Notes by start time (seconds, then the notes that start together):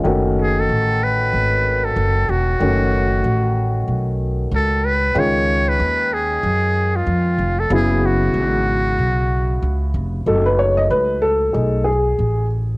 0.04 F#1 D#3 A3 C#4 F#4
0.41 G#4
0.60 A4
0.69 A1
1.03 B4
1.33 G#1
1.84 A4
1.96 F#1
2.29 E1 F#4
2.60 F#1 D#3 A3 C#4 F#4
3.24 A1
3.88 B1
4.51 C#2 A4
4.86 B4
5.14 C#2 D#3 G#3 C#4 F4
5.19 C#5
5.68 B4
5.80 D#2
6.13 G#4
6.43 F#2
6.96 F4
7.07 F2
7.38 F1
7.59 A4
7.70 F#1 C#3 F#3 B3 E4 G#4
8.05 F#4
8.34 G#1
8.98 B1
9.62 C#2
9.94 F1
10.26 F#1 F#3 A3 D#4 A4
10.46 B4
10.59 C#5
10.77 D#5
10.90 C#2 B4
11.22 A4
11.53 B1 A3 D#4 G#4
11.84 G#4
12.19 A1